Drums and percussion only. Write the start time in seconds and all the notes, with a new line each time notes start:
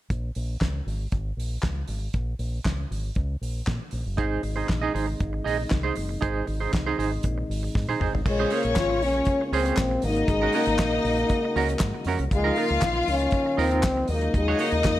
0.10 kick, closed hi-hat
0.35 open hi-hat
0.61 kick, snare, clap, closed hi-hat
0.88 open hi-hat
1.12 kick, closed hi-hat
1.40 open hi-hat
1.63 kick, snare, clap, closed hi-hat
1.88 open hi-hat
2.13 kick, closed hi-hat
2.39 open hi-hat
2.65 kick, snare, clap, closed hi-hat
2.92 open hi-hat
3.15 kick, closed hi-hat
3.43 open hi-hat
3.67 kick, snare, clap, closed hi-hat
3.91 open hi-hat
4.18 kick, closed hi-hat
4.43 open hi-hat
4.69 kick, snare, clap, closed hi-hat
4.96 open hi-hat
5.20 kick, closed hi-hat
5.47 open hi-hat
5.70 kick, snare, clap, closed hi-hat
5.96 open hi-hat
6.22 kick, closed hi-hat
6.47 open hi-hat
6.73 kick, snare, clap, closed hi-hat
7.00 open hi-hat
7.23 kick, closed hi-hat
7.51 open hi-hat
7.75 kick, snare
7.89 high tom
8.01 mid tom
8.15 floor tom
8.26 kick, crash
8.50 open hi-hat
8.63 closed hi-hat
8.76 kick, snare, clap, closed hi-hat
9.02 open hi-hat
9.13 closed hi-hat
9.25 kick, closed hi-hat
9.53 open hi-hat
9.65 closed hi-hat
9.77 kick, snare, clap, closed hi-hat
10.02 open hi-hat
10.15 closed hi-hat
10.28 kick, closed hi-hat
10.52 open hi-hat
10.66 closed hi-hat
10.78 kick, snare, clap, closed hi-hat
11.05 open hi-hat
11.17 closed hi-hat
11.29 kick, closed hi-hat
11.56 open hi-hat
11.69 closed hi-hat
11.79 kick, snare, clap, closed hi-hat
12.05 open hi-hat
12.19 closed hi-hat
12.31 kick, closed hi-hat
12.56 open hi-hat
12.69 closed hi-hat
12.81 kick, snare, clap, closed hi-hat
13.08 open hi-hat
13.19 closed hi-hat
13.31 kick, closed hi-hat
13.59 open hi-hat
13.71 closed hi-hat
13.83 kick, snare, clap, closed hi-hat
14.08 open hi-hat
14.21 closed hi-hat
14.34 kick, closed hi-hat
14.59 open hi-hat
14.72 closed hi-hat
14.84 kick, snare, clap, closed hi-hat